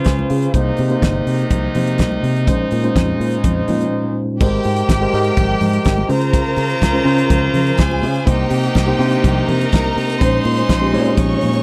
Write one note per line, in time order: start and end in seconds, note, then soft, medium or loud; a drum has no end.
0.00 0.52 C#3 medium
0.00 0.56 C#3 medium
0.00 0.56 C#4 medium
0.00 0.52 F4 loud
0.00 0.56 F4 medium
0.00 0.56 B4 medium
0.00 0.07 C5 medium
0.00 0.52 C5 medium
0.05 0.22 C#2 loud
0.05 0.29 C5 soft
0.05 0.29 G#5 medium
0.05 kick medium
0.05 snare loud
0.05 closed hi-hat medium
0.05 high conga medium
0.19 high conga medium
0.30 0.47 C#3 medium
0.30 0.76 G#4 medium
0.30 0.76 F5 medium
0.30 open hi-hat medium
0.42 closed hi-hat soft
0.54 0.70 C2 medium
0.54 0.81 C3 medium
0.54 2.45 C3 medium
0.54 0.81 A#3 medium
0.54 2.45 A#3 medium
0.54 0.81 D#4 medium
0.54 4.24 D#4 medium
0.54 0.81 C5 medium
0.54 kick loud
0.54 closed hi-hat medium
0.54 muted conga medium
0.77 0.95 C3 loud
0.77 open hi-hat medium
0.77 muted conga soft
0.90 1.53 C3 medium
0.90 1.53 A#3 medium
0.90 1.53 D#4 medium
0.90 1.54 C5 medium
0.90 closed hi-hat soft
1.02 1.19 G1 medium
1.02 kick medium
1.02 snare medium
1.02 closed hi-hat medium
1.02 high conga medium
1.26 1.43 C3 loud
1.26 open hi-hat medium
1.38 closed hi-hat soft
1.50 1.67 C2 loud
1.50 kick loud
1.50 closed hi-hat medium
1.50 muted conga soft
1.50 low conga medium
1.75 2.29 C3 medium
1.75 2.01 C3 medium
1.75 2.29 A#3 medium
1.75 2.29 D#4 medium
1.75 2.29 C5 medium
1.75 open hi-hat medium
1.75 low conga medium
1.87 closed hi-hat soft
1.98 2.16 C2 medium
1.98 kick medium
1.98 snare loud
1.98 closed hi-hat medium
1.98 high conga medium
2.12 high conga medium
2.23 2.49 C3 loud
2.23 open hi-hat medium
2.37 closed hi-hat soft
2.47 2.64 A#1 loud
2.47 2.74 A#2 medium
2.47 4.24 C#3 medium
2.47 2.74 G#3 medium
2.47 4.24 G#3 medium
2.47 2.74 C#4 medium
2.47 2.74 D#4 medium
2.47 4.24 C5 medium
2.47 2.75 C5 loud
2.47 kick loud
2.47 closed hi-hat medium
2.47 muted conga medium
2.71 2.88 A#2 loud
2.71 open hi-hat medium
2.71 muted conga medium
2.83 3.46 A#2 medium
2.83 3.46 G#3 medium
2.83 3.46 C#4 medium
2.83 3.47 D#4 medium
2.83 3.47 C5 medium
2.83 closed hi-hat soft
2.96 3.12 F2 loud
2.96 kick medium
2.96 snare loud
2.96 closed hi-hat soft
2.96 high conga medium
3.20 3.36 A#2 medium
3.20 open hi-hat medium
3.32 closed hi-hat soft
3.44 3.61 F2 medium
3.44 kick loud
3.44 closed hi-hat medium
3.44 muted conga soft
3.44 low conga medium
3.68 4.22 A#2 medium
3.68 3.85 A#2 medium
3.68 4.22 G#3 medium
3.68 4.22 C#4 medium
3.68 4.22 D#4 medium
3.68 4.23 F4 medium
3.68 open hi-hat medium
3.68 muted conga soft
3.68 low conga medium
3.81 closed hi-hat soft
4.40 4.57 G#1 loud
4.40 6.08 C3 medium
4.40 4.85 G#3 medium
4.40 6.08 A#3 medium
4.40 6.06 G4 medium
4.40 4.85 G4 medium
4.40 6.08 G4 loud
4.40 4.86 A#4 medium
4.40 4.86 C5 medium
4.40 6.06 G5 loud
4.40 kick loud
4.40 crash loud
4.40 muted conga medium
4.63 4.81 G#2 loud
4.63 open hi-hat medium
4.63 muted conga soft
4.77 closed hi-hat soft
4.89 5.06 G#1 medium
4.89 kick loud
4.89 snare loud
4.89 closed hi-hat medium
4.89 high conga medium
5.01 5.10 G#3 medium
5.01 5.10 G4 medium
5.01 5.11 A#4 medium
5.01 5.11 C5 loud
5.13 5.30 G#2 loud
5.13 5.85 G#3 medium
5.13 5.85 G4 medium
5.13 5.85 A#4 medium
5.13 5.85 D#5 medium
5.13 open hi-hat medium
5.24 closed hi-hat soft
5.37 5.54 G#1 loud
5.37 kick loud
5.37 closed hi-hat medium
5.37 muted conga soft
5.37 low conga medium
5.61 5.77 G#2 medium
5.61 open hi-hat medium
5.61 muted conga soft
5.61 low conga medium
5.73 closed hi-hat medium
5.85 6.02 G#1 loud
5.85 kick medium
5.85 snare loud
5.85 closed hi-hat medium
5.85 high conga medium
5.98 high conga medium
6.09 6.77 C#3 loud
6.09 6.42 C#3 loud
6.09 8.25 C#3 medium
6.09 6.77 C#4 medium
6.09 6.77 F4 medium
6.09 8.25 F4 loud
6.09 7.76 A#4 medium
6.09 6.77 C5 loud
6.09 8.25 C5 medium
6.09 7.76 A#5 loud
6.09 open hi-hat medium
6.21 closed hi-hat medium
6.33 kick loud
6.33 closed hi-hat medium
6.33 muted conga medium
6.56 6.74 C#3 loud
6.56 open hi-hat medium
6.56 muted conga medium
6.70 closed hi-hat soft
6.82 6.99 C#2 loud
6.82 kick medium
6.82 snare loud
6.82 closed hi-hat medium
6.82 high conga medium
6.93 7.02 C#3 medium
6.93 7.02 C#4 medium
6.93 7.03 F4 medium
6.93 7.03 C5 medium
7.05 7.77 C#3 medium
7.05 7.22 C#3 loud
7.05 7.77 C#4 medium
7.05 7.78 F4 medium
7.05 7.78 C5 loud
7.05 open hi-hat medium
7.18 closed hi-hat soft
7.30 7.47 C#2 loud
7.30 kick loud
7.30 closed hi-hat medium
7.30 muted conga medium
7.30 low conga medium
7.54 7.70 C#3 loud
7.54 open hi-hat medium
7.54 muted conga soft
7.54 low conga medium
7.67 closed hi-hat medium
7.78 8.03 C#2 loud
7.78 8.26 G#4 medium
7.78 8.26 G#5 medium
7.78 kick loud
7.78 snare loud
7.78 closed hi-hat medium
7.78 high conga medium
7.91 high conga medium
8.02 8.19 C#3 loud
8.02 open hi-hat medium
8.16 closed hi-hat medium
8.26 8.43 C2 loud
8.26 8.71 C3 medium
8.26 10.19 C3 medium
8.26 8.71 A#3 medium
8.26 10.19 A#3 medium
8.26 8.72 D#4 medium
8.26 11.63 D#4 loud
8.26 9.46 G4 medium
8.26 8.72 C5 loud
8.26 9.46 G5 medium
8.26 kick loud
8.26 closed hi-hat medium
8.26 muted conga medium
8.50 8.67 C3 loud
8.50 open hi-hat medium
8.50 muted conga soft
8.63 closed hi-hat medium
8.75 8.92 C2 loud
8.75 kick medium
8.75 snare loud
8.75 closed hi-hat medium
8.75 high conga medium
8.86 8.96 C3 medium
8.86 8.96 A#3 medium
8.86 8.96 D#4 medium
8.86 8.97 C5 loud
8.99 9.71 C3 medium
8.99 9.16 C3 loud
8.99 9.71 A#3 medium
8.99 9.06 D4 medium
8.99 9.72 C5 loud
8.99 open hi-hat medium
9.06 9.74 D#4 medium
9.12 closed hi-hat soft
9.24 9.40 C2 loud
9.24 kick loud
9.24 closed hi-hat medium
9.24 muted conga medium
9.24 low conga medium
9.48 9.65 C3 medium
9.48 10.19 A#4 medium
9.48 10.19 A#5 medium
9.48 open hi-hat medium
9.48 muted conga soft
9.48 low conga medium
9.61 closed hi-hat medium
9.72 9.89 C2 loud
9.72 kick loud
9.72 snare loud
9.72 closed hi-hat medium
9.72 high conga medium
9.84 high conga medium
9.96 10.23 C3 loud
9.96 open hi-hat medium
10.10 closed hi-hat medium
10.20 10.38 A#1 loud
10.20 10.65 A#2 medium
10.20 11.63 C#3 medium
10.20 10.65 G#3 medium
10.20 11.63 G#3 medium
10.20 10.66 C#4 medium
10.20 11.63 C#4 medium
10.20 10.66 D#4 medium
10.20 11.15 C5 medium
10.20 10.66 C5 loud
10.20 11.16 C6 loud
10.20 kick loud
10.20 closed hi-hat medium
10.20 muted conga medium
10.44 10.61 A#2 loud
10.44 open hi-hat medium
10.44 muted conga medium
10.57 closed hi-hat soft
10.69 10.95 A#1 loud
10.69 kick medium
10.69 snare loud
10.69 closed hi-hat medium
10.69 high conga medium
10.81 10.90 A#2 medium
10.81 10.90 G#3 medium
10.81 10.90 C#4 medium
10.81 10.90 D#4 medium
10.81 10.91 G4 medium
10.93 11.63 A#2 loud
10.93 11.10 A#2 loud
10.93 11.63 G#3 medium
10.93 10.99 C4 medium
10.93 11.63 D#4 medium
10.93 11.63 C#5 medium
10.93 open hi-hat medium
10.99 11.63 C#4 medium
11.05 closed hi-hat soft
11.17 11.34 A#1 loud
11.17 11.63 C#5 medium
11.17 11.63 C#6 medium
11.17 kick loud
11.17 closed hi-hat medium
11.17 muted conga medium
11.17 low conga medium
11.41 11.59 A#2 medium
11.41 open hi-hat medium
11.41 low conga medium
11.54 closed hi-hat medium